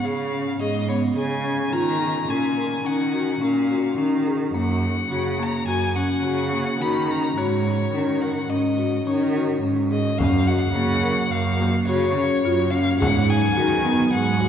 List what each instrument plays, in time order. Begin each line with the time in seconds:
0.03 cello C#3, marimba G#4, violin F5
0.33 marimba C#4
0.60 cello G#2, marimba G#4, violin D#5
0.89 marimba B3, violin C#5
1.17 cello C#3, marimba G#4, violin G#5
1.44 marimba C#4
1.73 cello D#3, marimba F4, violin A#5
2.28 cello A#2, marimba C#4, violin G#5
2.57 marimba A#4
2.85 cello D#3, marimba C#4, violin F#5
3.14 marimba F#4
3.41 cello A#2, marimba C#4, violin F5
3.71 marimba F#4
3.98 cello D#3, marimba C#4
4.27 marimba G#4
4.54 cello F#2, marimba A#3, violin F#5
5.11 cello C#3, marimba F#4
5.40 marimba A#3, violin A#5
5.67 cello F#2, marimba F#4, violin G#5
5.96 marimba C#4, violin F#5
6.23 cello C#3, marimba F#4
6.52 marimba A#3
6.81 cello D#3, marimba F#4, violin B5
7.09 marimba C#4, violin A#5
7.37 cello G#2, marimba F#4, violin C#5
7.93 cello D#3, marimba C#4
8.22 marimba A#4, violin F#5
8.50 cello G#2, marimba C#4, violin D#5
8.78 marimba F#4
9.07 cello D#3, marimba C#4, violin C#5
9.35 marimba F#4
9.62 cello G#2, marimba C#4
9.91 marimba G#4, violin D#5
10.18 cello F#2, string section F#3 A#3 F#4, marimba C#4, violin F5, frame drum
10.47 marimba F#4, violin F#5
10.74 cello C#3, marimba A#3
11.04 marimba A#4
11.31 cello F#2, violin F5
11.60 marimba A#3, frame drum
11.87 cello C#3, marimba F#4, violin C#5
12.17 marimba C#4
12.43 cello F#2, marimba F4
12.71 marimba C#4, violin F5
12.99 cello G#2, string section F#3 B3 G#4, marimba G#4, violin F#5, frame drum
13.29 marimba D#4, violin G#5
13.57 cello D#3, marimba F#4
13.85 marimba B3
14.12 cello G#2, violin F#5
14.40 marimba F#4, frame drum